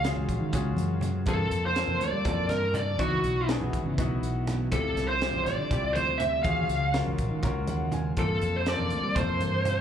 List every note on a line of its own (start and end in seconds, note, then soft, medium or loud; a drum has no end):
0.00 0.12 C#2 medium
0.00 1.26 C#3 medium
0.00 1.26 F#3 medium
0.00 1.26 G#3 medium
0.04 0.49 C#4 medium
0.04 0.49 F4 medium
0.04 0.49 F#4 medium
0.04 0.49 G#4 medium
0.04 snare loud
0.04 closed hi-hat medium
0.16 0.27 C#2 medium
0.16 high conga medium
0.16 low conga medium
0.29 0.40 A#1 medium
0.29 kick medium
0.29 closed hi-hat medium
0.41 0.55 D#3 medium
0.53 0.77 C#2 medium
0.53 1.20 C#4 medium
0.53 1.20 F4 medium
0.53 1.20 F#4 medium
0.53 1.21 G#4 medium
0.53 kick medium
0.53 closed hi-hat medium
0.53 low conga medium
0.77 1.27 F#2 medium
0.77 closed hi-hat medium
0.77 high conga medium
1.01 closed hi-hat medium
1.01 low conga medium
1.26 1.49 G2 medium
1.26 2.97 C3 medium
1.26 1.71 A#3 medium
1.26 2.97 A#3 medium
1.26 1.72 C4 medium
1.26 1.72 F4 medium
1.26 1.72 A4 medium
1.26 1.62 A4 medium
1.26 kick loud
1.26 closed hi-hat medium
1.26 high conga medium
1.39 low conga medium
1.51 1.84 F2 medium
1.51 closed hi-hat medium
1.64 2.03 C5 loud
1.64 low conga soft
1.76 2.21 A#3 medium
1.76 2.21 C4 medium
1.76 2.21 F4 medium
1.76 2.21 A4 medium
1.76 snare loud
1.76 closed hi-hat medium
1.88 1.99 F2 medium
1.88 high conga medium
1.88 low conga medium
2.00 2.11 D2 medium
2.00 2.46 D5 medium
2.00 closed hi-hat medium
2.13 2.27 G3 medium
2.25 2.49 F2 medium
2.25 2.92 A#3 medium
2.25 2.92 C4 medium
2.25 2.93 F4 medium
2.25 2.93 A4 medium
2.25 kick loud
2.25 closed hi-hat medium
2.25 low conga medium
2.49 2.99 G2 medium
2.49 2.75 A#4 medium
2.49 snare soft
2.49 closed hi-hat medium
2.49 high conga medium
2.74 2.97 D5 medium
2.74 closed hi-hat medium
2.74 low conga medium
2.99 3.21 C#2 medium
2.99 4.70 E3 medium
2.99 4.71 F#3 medium
2.99 3.44 B3 medium
2.99 4.71 B3 medium
2.99 3.44 D#4 medium
2.99 3.44 E4 medium
2.99 3.51 F#4 medium
2.99 3.44 F#4 medium
2.99 kick loud
2.99 closed hi-hat medium
2.99 high conga loud
3.11 low conga medium
3.24 3.57 B1 medium
3.24 closed hi-hat medium
3.36 low conga soft
3.48 3.93 B3 medium
3.48 3.93 D#4 medium
3.48 3.93 E4 medium
3.48 3.93 G#4 medium
3.48 snare loud
3.48 closed hi-hat medium
3.61 3.72 B1 medium
3.61 high conga medium
3.61 low conga medium
3.73 3.84 G#1 medium
3.73 kick medium
3.73 closed hi-hat medium
3.86 4.00 C#3 medium
3.86 low conga soft
3.98 4.20 B1 medium
3.98 4.65 B3 medium
3.98 4.65 D#4 medium
3.98 4.65 E4 medium
3.98 4.66 F#4 medium
3.98 kick loud
3.98 closed hi-hat medium
3.98 low conga medium
4.23 4.72 B1 medium
4.23 closed hi-hat medium
4.36 low conga soft
4.47 snare soft
4.47 closed hi-hat medium
4.47 low conga medium
4.72 4.94 D2 medium
4.72 6.43 C3 medium
4.72 6.43 F3 medium
4.72 6.43 G3 medium
4.72 5.17 C4 medium
4.72 5.17 E4 medium
4.72 5.17 F4 medium
4.72 5.17 G4 medium
4.72 5.08 A4 medium
4.72 kick loud
4.72 closed hi-hat medium
4.72 high conga medium
4.84 low conga medium
4.97 5.30 C2 medium
4.97 snare soft
4.97 closed hi-hat medium
5.08 5.46 C5 medium
5.22 5.66 C4 medium
5.22 5.66 E4 medium
5.22 5.66 F4 medium
5.22 5.67 G4 medium
5.22 snare loud
5.22 closed hi-hat medium
5.34 5.44 C2 medium
5.34 high conga medium
5.34 low conga medium
5.44 5.57 A1 medium
5.44 5.96 D5 medium
5.44 snare soft
5.44 closed hi-hat medium
5.59 5.72 D3 medium
5.71 5.95 C2 medium
5.71 6.38 C4 medium
5.71 6.38 E4 medium
5.71 6.38 F4 medium
5.71 6.38 G4 medium
5.71 kick loud
5.71 closed hi-hat medium
5.71 low conga medium
5.93 6.45 D2 medium
5.93 6.19 C5 medium
5.93 closed hi-hat medium
5.93 high conga medium
6.18 6.43 E5 medium
6.18 closed hi-hat medium
6.18 low conga medium
6.43 6.67 D#2 medium
6.43 8.15 C#3 medium
6.43 8.15 F#3 medium
6.43 8.15 G#3 medium
6.43 6.89 C#4 medium
6.43 6.90 F4 medium
6.43 6.90 F#4 medium
6.43 6.90 G#4 medium
6.43 6.95 F5 loud
6.43 kick loud
6.43 closed hi-hat medium
6.43 high conga medium
6.57 low conga medium
6.69 7.03 C#2 medium
6.69 closed hi-hat medium
6.93 7.38 C#4 medium
6.93 7.39 F4 medium
6.93 7.39 F#4 medium
6.93 7.39 A#4 medium
6.93 snare loud
6.93 closed hi-hat medium
7.06 7.17 C#2 medium
7.06 high conga medium
7.06 low conga medium
7.18 7.30 A#1 medium
7.18 kick medium
7.18 closed hi-hat medium
7.31 7.45 D#3 medium
7.43 7.69 C#2 medium
7.43 8.10 C#4 medium
7.43 8.10 F4 medium
7.43 8.11 F#4 medium
7.43 8.11 A#4 medium
7.43 kick loud
7.43 closed hi-hat medium
7.43 low conga medium
7.67 8.17 D#2 medium
7.67 7.91 F#5 medium
7.67 closed hi-hat medium
7.67 high conga medium
7.92 8.16 G#5 medium
7.92 closed hi-hat medium
7.92 low conga medium
8.16 8.39 G2 medium
8.16 9.81 C3 medium
8.16 8.62 A#3 medium
8.16 9.81 A#3 medium
8.16 8.62 C4 medium
8.16 8.62 F4 medium
8.16 8.62 A4 medium
8.16 8.56 A4 medium
8.16 kick loud
8.16 closed hi-hat medium
8.16 high conga medium
8.29 low conga medium
8.42 8.75 F2 medium
8.42 closed hi-hat medium
8.54 8.68 C5 medium
8.54 low conga soft
8.66 9.11 A#3 medium
8.66 9.11 C4 medium
8.66 9.11 F4 medium
8.66 9.11 A4 medium
8.66 9.16 D5 loud
8.66 snare loud
8.66 closed hi-hat medium
8.79 8.90 F2 medium
8.79 high conga medium
8.79 low conga medium
8.90 9.02 D2 medium
8.90 closed hi-hat medium
9.04 9.17 G3 medium
9.16 9.41 F2 medium
9.16 9.81 A#3 medium
9.16 9.81 C4 medium
9.16 9.81 F4 medium
9.16 9.81 A4 medium
9.16 9.81 C5 medium
9.16 kick loud
9.16 closed hi-hat medium
9.16 low conga medium
9.41 9.81 G2 medium
9.41 closed hi-hat medium
9.41 high conga medium
9.65 closed hi-hat medium
9.65 low conga loud